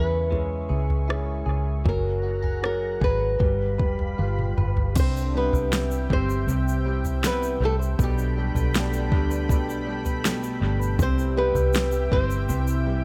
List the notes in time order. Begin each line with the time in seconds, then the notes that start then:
Already playing: E2 C#3 G#3 C#4 E4 G#4 B4 E5 C#6
0.31 G#3 C#4 E4 G#4, floor tom
0.69 C#2 G#4
0.90 floor tom
1.08 C#4 E4 G#4, cross-stick
1.21 A#4
1.46 C#2 G#4
1.85 F#1 F#3 A#4 F#5 A#5, kick, floor tom
2.23 F#4
2.42 G#4, floor tom
2.62 F#4 G#4 A#4 C#5, cross-stick
3.01 G#1 G#4 B4, kick, floor tom
3.40 G1 G3 G4 F5 B5, kick, floor tom
3.78 F1 B4, kick
3.99 floor tom
4.18 G1 F4 G4 B4, high tom
4.39 mid tom
4.58 G1 B4, mid tom
4.77 floor tom
4.96 C2 C3 D3 D4 G4 C5 E5 G5, kick, floor tom, crash, shaker
5.00 C4
5.17 shaker
5.34 G3 B3 E4 B4
5.53 C2, floor tom, shaker
5.71 C3 G3, snare, shaker
5.91 E4, shaker
6.10 G1 G3 C4 C5, kick, floor tom
6.28 C5, shaker
6.47 C2 C3 C4 C5, floor tom, shaker
6.68 shaker
6.86 G3 E4
7.05 floor tom, shaker
7.23 C3 G3 B3 B4, snare, shaker
7.42 E4, shaker
7.60 C2 G3 A3 C4
7.65 A4
7.79 C5, shaker
7.98 B1 B2 D3 D4 A4 B4 G5 B5, kick, floor tom, shaker
8.02 G3 G4
8.18 D4, shaker
8.37 G3 G4
8.55 B1 B4, floor tom, shaker
8.74 B2 G3 A3 G4, snare, shaker
8.93 G4, shaker
9.12 D2 G3 D4, kick, floor tom
9.31 B4, shaker
9.49 B1 B2 B4, kick, floor tom, shaker
9.68 D4, shaker
9.87 G3 G4
10.05 B4, floor tom, shaker
10.24 B2 A3, snare, shaker
10.43 G4, shaker
10.61 G1 G3 D4
10.80 B4, shaker
10.98 C2 C3 G3 C4 G4 C5 E5 G5, kick, floor tom, shaker
11.03 C5
11.18 E4, shaker
11.36 G3 B3 G4 B4
11.55 C2, floor tom, shaker
11.73 C3, snare, shaker
11.92 G4, shaker
12.11 G1 G3 C4 E4 C5, kick, floor tom
12.30 C5, shaker
12.49 C2 C3 E3 E4 C5, floor tom, shaker
12.67 E4, shaker
12.86 G3 G4